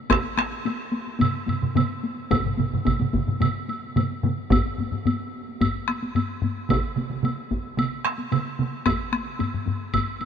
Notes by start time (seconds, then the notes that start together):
0.10 taiko rim, taiko, taiko high, high woodblock
0.24 taiko high
0.37 taiko rim, taiko high
0.52 taiko high
0.65 taiko high, high woodblock
0.92 taiko high
1.06 taiko high
1.20 taiko low-mid, taiko mid, taiko high, high woodblock
1.34 taiko high
1.47 taiko low-mid, taiko mid, taiko high, high woodblock
1.62 taiko low-mid, taiko mid, taiko high
1.75 taiko low-mid, taiko mid, taiko high, high woodblock
1.89 taiko high
2.03 taiko high
2.18 taiko high
2.31 taiko, taiko low-mid, taiko mid, taiko high, high woodblock
2.45 taiko low-mid, taiko mid, taiko high
2.58 taiko low-mid, taiko mid, taiko high
2.72 taiko low-mid, taiko mid, taiko high
2.85 taiko, taiko low-mid, taiko mid, taiko high, high woodblock
2.99 taiko low-mid, taiko mid, taiko high
3.13 taiko, taiko low-mid, taiko mid, taiko high
3.27 taiko low-mid, taiko mid, taiko high
3.40 taiko low-mid, taiko mid, taiko high, high woodblock
3.54 taiko high
3.69 taiko high, high woodblock
3.82 taiko high
3.96 taiko low-mid, taiko mid, taiko high, high woodblock
4.10 taiko high
4.23 taiko low-mid, taiko mid, taiko high
4.38 taiko high
4.50 taiko, taiko low-mid, taiko high, high woodblock
4.66 taiko high
4.78 taiko low-mid, taiko high
4.92 taiko low-mid, taiko high
5.05 taiko low-mid, taiko high, high woodblock
5.20 taiko high
5.48 taiko high
5.61 taiko, taiko low-mid, taiko high, high woodblock
5.75 taiko high
5.88 taiko rim, taiko high, high woodblock
6.03 taiko high
6.15 taiko low-mid, taiko high, high woodblock
6.42 taiko low-mid, taiko high
6.57 taiko high
6.69 taiko, taiko mid, taiko high, high woodblock
6.84 taiko high
6.96 taiko mid, taiko high
7.10 taiko mid, taiko high
7.23 taiko mid, taiko high, high woodblock
7.37 taiko high
7.51 taiko, taiko high
7.64 taiko high
7.77 taiko mid, taiko high, high woodblock
7.92 taiko high
8.05 taiko rim, taiko high, high woodblock
8.18 taiko high
8.32 taiko mid, taiko high, high woodblock
8.45 taiko high
8.59 taiko mid, taiko high
8.73 taiko high
8.86 taiko rim, taiko, taiko high, high woodblock
8.99 taiko high
9.12 taiko rim, taiko high
9.26 taiko high
9.40 taiko low-mid, taiko high, high woodblock
9.53 taiko low-mid, taiko high
9.67 taiko low-mid, taiko high
9.81 taiko high
9.94 taiko, taiko low-mid, taiko high, high woodblock
10.08 taiko high
10.21 taiko high, high woodblock